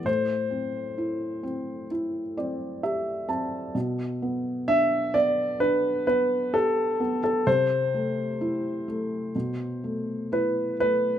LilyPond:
<<
  \new Staff \with { instrumentName = "Grand piano" } { \time 4/4 \key g \major \tempo 4 = 64 c''2 r2 | r4 e''8 d''8 b'8 b'8 a'8. a'16 | c''2. b'8 b'8 | }
  \new Staff \with { instrumentName = "Felt piano" } { \time 4/4 \key g \major a,8 c'8 e'8 c'8 e'8 <c' d''>8 <g' e''>8 <c' a''>8 | b,8 b8 d'8 b8 d'8 b8 g'8 b8 | c8 a8 e'8 a8 b,8 a8 e'8 a8 | }
>>